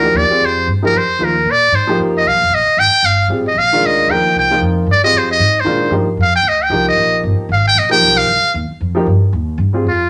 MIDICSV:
0, 0, Header, 1, 5, 480
1, 0, Start_track
1, 0, Tempo, 262123
1, 749, Time_signature, 4, 2, 24, 8
1, 18490, End_track
2, 0, Start_track
2, 0, Title_t, "Muted trumpet"
2, 0, Program_c, 0, 59
2, 0, Note_on_c, 0, 70, 80
2, 311, Note_on_c, 0, 74, 86
2, 338, Note_off_c, 0, 70, 0
2, 827, Note_on_c, 0, 72, 79
2, 855, Note_off_c, 0, 74, 0
2, 1270, Note_off_c, 0, 72, 0
2, 1572, Note_on_c, 0, 70, 91
2, 1783, Note_on_c, 0, 72, 82
2, 1810, Note_off_c, 0, 70, 0
2, 2280, Note_on_c, 0, 70, 77
2, 2308, Note_off_c, 0, 72, 0
2, 2766, Note_on_c, 0, 74, 91
2, 2794, Note_off_c, 0, 70, 0
2, 3204, Note_on_c, 0, 72, 78
2, 3232, Note_off_c, 0, 74, 0
2, 3661, Note_off_c, 0, 72, 0
2, 3984, Note_on_c, 0, 75, 81
2, 4164, Note_on_c, 0, 77, 91
2, 4192, Note_off_c, 0, 75, 0
2, 4660, Note_on_c, 0, 75, 94
2, 4688, Note_off_c, 0, 77, 0
2, 5110, Note_on_c, 0, 79, 113
2, 5137, Note_off_c, 0, 75, 0
2, 5596, Note_on_c, 0, 77, 93
2, 5623, Note_off_c, 0, 79, 0
2, 6058, Note_off_c, 0, 77, 0
2, 6363, Note_on_c, 0, 75, 87
2, 6563, Note_on_c, 0, 77, 98
2, 6591, Note_off_c, 0, 75, 0
2, 7068, Note_on_c, 0, 75, 87
2, 7095, Note_off_c, 0, 77, 0
2, 7524, Note_on_c, 0, 79, 90
2, 7551, Note_off_c, 0, 75, 0
2, 7982, Note_off_c, 0, 79, 0
2, 8038, Note_on_c, 0, 79, 89
2, 8449, Note_off_c, 0, 79, 0
2, 9005, Note_on_c, 0, 74, 88
2, 9221, Note_off_c, 0, 74, 0
2, 9232, Note_on_c, 0, 75, 119
2, 9487, Note_on_c, 0, 72, 85
2, 9515, Note_off_c, 0, 75, 0
2, 9722, Note_off_c, 0, 72, 0
2, 9733, Note_on_c, 0, 75, 103
2, 10260, Note_on_c, 0, 72, 83
2, 10287, Note_off_c, 0, 75, 0
2, 10886, Note_off_c, 0, 72, 0
2, 11387, Note_on_c, 0, 77, 88
2, 11621, Note_off_c, 0, 77, 0
2, 11641, Note_on_c, 0, 79, 103
2, 11873, Note_on_c, 0, 75, 79
2, 11900, Note_off_c, 0, 79, 0
2, 12132, Note_on_c, 0, 79, 98
2, 12159, Note_off_c, 0, 75, 0
2, 12587, Note_off_c, 0, 79, 0
2, 12602, Note_on_c, 0, 75, 97
2, 13210, Note_off_c, 0, 75, 0
2, 13777, Note_on_c, 0, 77, 83
2, 14014, Note_off_c, 0, 77, 0
2, 14057, Note_on_c, 0, 79, 114
2, 14255, Note_on_c, 0, 75, 84
2, 14283, Note_off_c, 0, 79, 0
2, 14480, Note_off_c, 0, 75, 0
2, 14491, Note_on_c, 0, 79, 114
2, 14972, Note_on_c, 0, 77, 103
2, 14999, Note_off_c, 0, 79, 0
2, 15638, Note_off_c, 0, 77, 0
2, 18094, Note_on_c, 0, 65, 73
2, 18490, Note_off_c, 0, 65, 0
2, 18490, End_track
3, 0, Start_track
3, 0, Title_t, "Upright piano"
3, 0, Program_c, 1, 0
3, 52, Note_on_c, 1, 58, 54
3, 55, Note_on_c, 1, 53, 59
3, 70, Note_on_c, 1, 63, 53
3, 74, Note_on_c, 1, 67, 64
3, 487, Note_off_c, 1, 58, 0
3, 489, Note_off_c, 1, 53, 0
3, 496, Note_off_c, 1, 63, 0
3, 498, Note_off_c, 1, 67, 0
3, 556, Note_on_c, 1, 67, 61
3, 563, Note_on_c, 1, 60, 55
3, 569, Note_on_c, 1, 65, 53
3, 583, Note_on_c, 1, 68, 68
3, 1193, Note_off_c, 1, 67, 0
3, 1196, Note_off_c, 1, 60, 0
3, 1199, Note_off_c, 1, 65, 0
3, 1206, Note_off_c, 1, 68, 0
3, 1510, Note_on_c, 1, 53, 70
3, 1512, Note_on_c, 1, 58, 64
3, 1522, Note_on_c, 1, 63, 67
3, 1540, Note_on_c, 1, 67, 70
3, 1689, Note_off_c, 1, 53, 0
3, 1690, Note_off_c, 1, 58, 0
3, 1695, Note_off_c, 1, 63, 0
3, 1704, Note_off_c, 1, 67, 0
3, 2189, Note_on_c, 1, 53, 53
3, 2196, Note_on_c, 1, 58, 50
3, 2204, Note_on_c, 1, 63, 47
3, 2218, Note_on_c, 1, 65, 62
3, 2449, Note_off_c, 1, 53, 0
3, 2453, Note_off_c, 1, 58, 0
3, 2457, Note_off_c, 1, 63, 0
3, 2464, Note_off_c, 1, 65, 0
3, 3429, Note_on_c, 1, 53, 86
3, 3439, Note_on_c, 1, 58, 75
3, 3458, Note_on_c, 1, 63, 72
3, 3466, Note_on_c, 1, 67, 90
3, 4071, Note_off_c, 1, 53, 0
3, 4076, Note_off_c, 1, 58, 0
3, 4086, Note_off_c, 1, 63, 0
3, 4090, Note_off_c, 1, 67, 0
3, 6033, Note_on_c, 1, 55, 64
3, 6040, Note_on_c, 1, 60, 55
3, 6054, Note_on_c, 1, 68, 72
3, 6061, Note_on_c, 1, 65, 55
3, 6294, Note_off_c, 1, 55, 0
3, 6297, Note_off_c, 1, 60, 0
3, 6304, Note_off_c, 1, 68, 0
3, 6308, Note_off_c, 1, 65, 0
3, 6824, Note_on_c, 1, 51, 72
3, 6835, Note_on_c, 1, 56, 68
3, 6837, Note_on_c, 1, 62, 64
3, 6850, Note_on_c, 1, 65, 83
3, 7451, Note_off_c, 1, 51, 0
3, 7456, Note_off_c, 1, 56, 0
3, 7457, Note_off_c, 1, 62, 0
3, 7464, Note_off_c, 1, 65, 0
3, 7500, Note_on_c, 1, 58, 54
3, 7501, Note_on_c, 1, 53, 62
3, 7508, Note_on_c, 1, 63, 59
3, 7511, Note_on_c, 1, 70, 70
3, 8199, Note_off_c, 1, 58, 0
3, 8200, Note_off_c, 1, 53, 0
3, 8204, Note_off_c, 1, 63, 0
3, 8205, Note_off_c, 1, 70, 0
3, 8252, Note_on_c, 1, 53, 65
3, 8259, Note_on_c, 1, 58, 63
3, 8269, Note_on_c, 1, 63, 65
3, 8269, Note_on_c, 1, 65, 75
3, 8885, Note_off_c, 1, 53, 0
3, 8888, Note_off_c, 1, 58, 0
3, 8893, Note_off_c, 1, 63, 0
3, 8893, Note_off_c, 1, 65, 0
3, 9222, Note_on_c, 1, 67, 69
3, 9231, Note_on_c, 1, 65, 67
3, 9232, Note_on_c, 1, 60, 64
3, 9245, Note_on_c, 1, 68, 74
3, 9849, Note_off_c, 1, 67, 0
3, 9854, Note_off_c, 1, 60, 0
3, 9854, Note_off_c, 1, 65, 0
3, 9861, Note_off_c, 1, 68, 0
3, 10337, Note_on_c, 1, 51, 75
3, 10351, Note_on_c, 1, 56, 63
3, 10368, Note_on_c, 1, 62, 67
3, 10376, Note_on_c, 1, 65, 81
3, 10806, Note_on_c, 1, 53, 67
3, 10809, Note_off_c, 1, 51, 0
3, 10816, Note_off_c, 1, 56, 0
3, 10824, Note_off_c, 1, 62, 0
3, 10828, Note_off_c, 1, 65, 0
3, 10829, Note_on_c, 1, 58, 68
3, 10840, Note_on_c, 1, 67, 78
3, 10843, Note_on_c, 1, 63, 66
3, 11080, Note_off_c, 1, 53, 0
3, 11091, Note_off_c, 1, 58, 0
3, 11097, Note_off_c, 1, 67, 0
3, 11099, Note_off_c, 1, 63, 0
3, 12272, Note_on_c, 1, 53, 69
3, 12282, Note_on_c, 1, 58, 59
3, 12290, Note_on_c, 1, 63, 65
3, 12295, Note_on_c, 1, 67, 79
3, 13596, Note_off_c, 1, 53, 0
3, 13601, Note_off_c, 1, 58, 0
3, 13606, Note_off_c, 1, 63, 0
3, 13608, Note_off_c, 1, 67, 0
3, 14458, Note_on_c, 1, 53, 80
3, 14478, Note_on_c, 1, 58, 72
3, 14480, Note_on_c, 1, 63, 74
3, 14497, Note_on_c, 1, 67, 92
3, 15103, Note_off_c, 1, 53, 0
3, 15113, Note_off_c, 1, 58, 0
3, 15114, Note_off_c, 1, 63, 0
3, 15122, Note_off_c, 1, 67, 0
3, 16385, Note_on_c, 1, 53, 83
3, 16400, Note_on_c, 1, 58, 72
3, 16413, Note_on_c, 1, 63, 74
3, 16415, Note_on_c, 1, 67, 94
3, 16565, Note_off_c, 1, 53, 0
3, 16573, Note_off_c, 1, 58, 0
3, 16579, Note_off_c, 1, 63, 0
3, 16580, Note_off_c, 1, 67, 0
3, 17818, Note_on_c, 1, 55, 67
3, 17831, Note_on_c, 1, 60, 71
3, 17841, Note_on_c, 1, 65, 66
3, 17848, Note_on_c, 1, 68, 77
3, 18001, Note_off_c, 1, 55, 0
3, 18007, Note_off_c, 1, 60, 0
3, 18013, Note_off_c, 1, 65, 0
3, 18016, Note_off_c, 1, 68, 0
3, 18490, End_track
4, 0, Start_track
4, 0, Title_t, "Upright bass"
4, 0, Program_c, 2, 32
4, 0, Note_on_c, 2, 38, 74
4, 241, Note_off_c, 2, 38, 0
4, 252, Note_on_c, 2, 39, 89
4, 526, Note_off_c, 2, 39, 0
4, 732, Note_on_c, 2, 41, 84
4, 1207, Note_off_c, 2, 41, 0
4, 1229, Note_on_c, 2, 43, 86
4, 1690, Note_off_c, 2, 43, 0
4, 1701, Note_on_c, 2, 41, 75
4, 2167, Note_off_c, 2, 41, 0
4, 2178, Note_on_c, 2, 39, 89
4, 2646, Note_off_c, 2, 39, 0
4, 2657, Note_on_c, 2, 46, 84
4, 3132, Note_off_c, 2, 46, 0
4, 3140, Note_on_c, 2, 44, 79
4, 3614, Note_off_c, 2, 44, 0
4, 3626, Note_on_c, 2, 41, 74
4, 4097, Note_off_c, 2, 41, 0
4, 4114, Note_on_c, 2, 36, 88
4, 4263, Note_off_c, 2, 36, 0
4, 4263, Note_on_c, 2, 34, 50
4, 4422, Note_off_c, 2, 34, 0
4, 4433, Note_on_c, 2, 29, 69
4, 4560, Note_off_c, 2, 29, 0
4, 4571, Note_on_c, 2, 34, 78
4, 4850, Note_off_c, 2, 34, 0
4, 5070, Note_on_c, 2, 32, 89
4, 5321, Note_off_c, 2, 32, 0
4, 5540, Note_on_c, 2, 31, 73
4, 5998, Note_off_c, 2, 31, 0
4, 6009, Note_on_c, 2, 33, 89
4, 6476, Note_off_c, 2, 33, 0
4, 6487, Note_on_c, 2, 34, 80
4, 6969, Note_off_c, 2, 34, 0
4, 6979, Note_on_c, 2, 38, 81
4, 7439, Note_off_c, 2, 38, 0
4, 7450, Note_on_c, 2, 39, 75
4, 7931, Note_off_c, 2, 39, 0
4, 7951, Note_on_c, 2, 36, 94
4, 8422, Note_off_c, 2, 36, 0
4, 8446, Note_on_c, 2, 41, 88
4, 8897, Note_off_c, 2, 41, 0
4, 8908, Note_on_c, 2, 43, 88
4, 9368, Note_off_c, 2, 43, 0
4, 9379, Note_on_c, 2, 41, 77
4, 9855, Note_off_c, 2, 41, 0
4, 9875, Note_on_c, 2, 44, 89
4, 10343, Note_off_c, 2, 44, 0
4, 10361, Note_on_c, 2, 46, 80
4, 10798, Note_off_c, 2, 46, 0
4, 10809, Note_on_c, 2, 43, 90
4, 11289, Note_off_c, 2, 43, 0
4, 11301, Note_on_c, 2, 41, 76
4, 11770, Note_off_c, 2, 41, 0
4, 11781, Note_on_c, 2, 38, 89
4, 12254, Note_off_c, 2, 38, 0
4, 12262, Note_on_c, 2, 36, 85
4, 12734, Note_off_c, 2, 36, 0
4, 12748, Note_on_c, 2, 34, 82
4, 13217, Note_off_c, 2, 34, 0
4, 13247, Note_on_c, 2, 31, 84
4, 13508, Note_off_c, 2, 31, 0
4, 13715, Note_on_c, 2, 32, 91
4, 14180, Note_off_c, 2, 32, 0
4, 14192, Note_on_c, 2, 34, 86
4, 14658, Note_off_c, 2, 34, 0
4, 14676, Note_on_c, 2, 35, 92
4, 15140, Note_off_c, 2, 35, 0
4, 15158, Note_on_c, 2, 36, 86
4, 15421, Note_off_c, 2, 36, 0
4, 15641, Note_on_c, 2, 39, 97
4, 15903, Note_off_c, 2, 39, 0
4, 16124, Note_on_c, 2, 41, 83
4, 16582, Note_off_c, 2, 41, 0
4, 16595, Note_on_c, 2, 43, 98
4, 17058, Note_off_c, 2, 43, 0
4, 17079, Note_on_c, 2, 39, 88
4, 17527, Note_off_c, 2, 39, 0
4, 17538, Note_on_c, 2, 43, 101
4, 18009, Note_off_c, 2, 43, 0
4, 18024, Note_on_c, 2, 41, 70
4, 18490, Note_off_c, 2, 41, 0
4, 18490, End_track
5, 0, Start_track
5, 0, Title_t, "Muted upright bass strokes"
5, 4875, Note_on_c, 9, 29, 39
5, 5058, Note_off_c, 9, 29, 0
5, 5332, Note_on_c, 9, 29, 37
5, 5515, Note_off_c, 9, 29, 0
5, 13533, Note_on_c, 9, 29, 42
5, 13716, Note_off_c, 9, 29, 0
5, 15453, Note_on_c, 9, 29, 41
5, 15636, Note_off_c, 9, 29, 0
5, 15945, Note_on_c, 9, 29, 44
5, 16128, Note_off_c, 9, 29, 0
5, 18490, End_track
0, 0, End_of_file